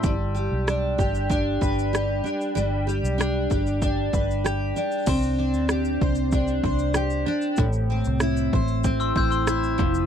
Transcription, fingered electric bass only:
X:1
M:4/4
L:1/16
Q:1/4=95
K:Am
V:1 name="Fingered electric bass" clef=bass
G,,,3 B,,,3 G,,,4 G,,,4 z2 | G,,,3 B,,,3 G,,,4 G,,,4 z2 | C,,3 D,,3 C,,4 C,,4 z2 | A,,,3 C,,3 A,,,4 A,,,4 F,,,2 |]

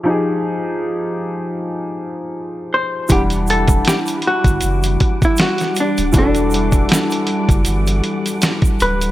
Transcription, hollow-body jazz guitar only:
X:1
M:4/4
L:1/16
Q:"Swing 16ths" 1/4=79
K:Em
V:1 name="Hollow-body jazz guitar"
z12 z2 c2 | G2 A2 G2 F4- F E F2 D2 | D4 z8 z2 B2 |]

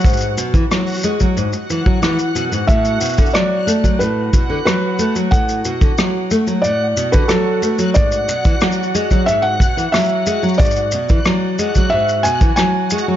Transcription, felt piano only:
X:1
M:4/4
L:1/16
Q:1/4=91
K:Emix
V:1 name="Felt piano"
z16 | e4 d4 B4 B3 z | f8 d3 B A3 z | d8 e f3 e3 z |
d8 e2 g2 g3 z |]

